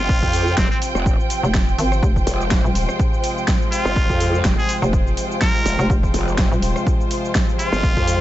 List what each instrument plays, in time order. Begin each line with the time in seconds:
Already playing: analog synth pad C3 F3 C4, muted trumpet F4, string section F4 C5 G5
0.00 wobble bass G1
0.09 kick, shaker
0.23 wobble bass F2, kick, shaker
0.33 open hi-hat, shaker
0.47 shaker
0.57 wobble bass F1, muted trumpet C4, kick, snare, shaker
0.71 muted trumpet C4, shaker
0.82 open hi-hat, shaker
0.95 wobble bass F1, cross-stick, shaker
1.06 kick, shaker
1.20 shaker
1.30 open hi-hat, shaker
1.44 fm bass F1, shaker
1.54 kick, snare, shaker
1.68 shaker
1.79 fm bass G#1, open hi-hat, shaker
1.92 cross-stick, shaker
2.03 fm bass F1, analog synth pad G#3, kick, shaker
2.16 kick, shaker
2.27 wobble bass F1, open hi-hat, shaker
2.41 shaker
2.51 kick, snare, shaker
2.65 fm bass D#1, shaker
2.75 open hi-hat, shaker
2.89 cross-stick, shaker
3.00 kick, shaker
3.14 shaker
3.24 open hi-hat, shaker
3.38 shaker
3.48 kick, snare, shaker
3.62 shaker
3.72 muted trumpet F4, open hi-hat, shaker
3.85 wobble bass G1, cross-stick, shaker
3.96 kick, shaker
4.10 wobble bass F2, kick, shaker
4.20 open hi-hat, shaker
4.35 shaker
4.45 wobble bass F1, kick, snare, shaker
4.58 muted trumpet G#4, shaker
4.69 open hi-hat, shaker
4.82 fm bass F1, cross-stick, shaker
4.93 kick, shaker
5.07 shaker
5.17 open hi-hat, shaker
5.31 shaker
5.41 muted trumpet A#4, kick, snare, shaker
5.56 shaker
5.66 wobble bass F1, open hi-hat, shaker
5.79 fm bass F1, cross-stick, shaker
5.90 fm bass F1, kick, shaker
6.03 kick, shaker
6.14 wobble bass F1, open hi-hat, shaker
6.28 shaker
6.38 kick, snare, shaker
6.52 fm bass D#1, shaker
6.62 open hi-hat, shaker
6.76 cross-stick, shaker
6.87 kick, shaker
7.01 shaker
7.11 open hi-hat, shaker
7.25 shaker
7.35 kick, snare, shaker
7.49 shaker
7.59 muted trumpet F4, open hi-hat, shaker
7.73 wobble bass G1, cross-stick, shaker
7.83 kick, shaker
7.97 wobble bass F2, kick, shaker
8.08 open hi-hat, shaker